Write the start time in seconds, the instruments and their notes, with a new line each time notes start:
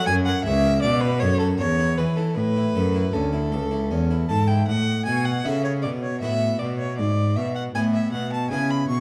0.07 harpsichord F#2, cello F#2, violin G#5
0.26 harpsichord A#4, violin F#5
0.44 cello C#2, harpsichord C#2 C#5, violin E5
0.66 harpsichord A#4
0.82 cello B2, harpsichord B2, violin D5
1.01 harpsichord F#4, violin B4
1.20 cello F#2, harpsichord F#2 A4, violin C#5
1.39 harpsichord F#4, violin A4
1.58 harpsichord E2, cello E2, violin C#5
1.79 harpsichord E4
1.97 cello E3, harpsichord E3 G#4, violin B4
2.16 harpsichord E4, violin A4
2.36 harpsichord A2, cello A2, violin B4
2.56 harpsichord E4
2.75 cello F#2, harpsichord F#2 A4
2.94 harpsichord E4
3.13 harpsichord D2 C#4, cello D2, violin A4
3.33 harpsichord E4
3.52 harpsichord C#2 A4, cello C#2
3.71 harpsichord E4
3.91 cello E2, harpsichord E2 C#4
4.11 harpsichord E4
4.28 harpsichord G#2 A4, cello G#2, violin A5
4.47 harpsichord E4, violin G5
4.67 cello A2, harpsichord A2, violin F#5
5.05 harpsichord B2, cello B2, violin G#5
5.25 violin F#5
5.44 harpsichord C#3 C#4 E4 A4, cello C#3, violin E5
5.64 violin C#5
5.82 harpsichord B2, cello B2, violin D5
6.03 violin C#5
6.21 harpsichord A2 B3 F#4 B4, cello A2, violin E5
6.59 harpsichord B2, cello B2, violin D5
6.78 violin C#5
6.97 cello G#2, harpsichord G#2, violin D5
7.36 cello B2, harpsichord B2, violin E5
7.55 violin F#5
7.75 cello A2, harpsichord A2 B3 E4 B4, violin G#5
7.94 violin E5
8.12 cello B2, harpsichord B2, violin F#5
8.32 violin A5
8.49 cello C#3, harpsichord C#3 B3 E4 B4, violin G#5
8.70 violin B5
8.88 cello B2, harpsichord B2, violin C#6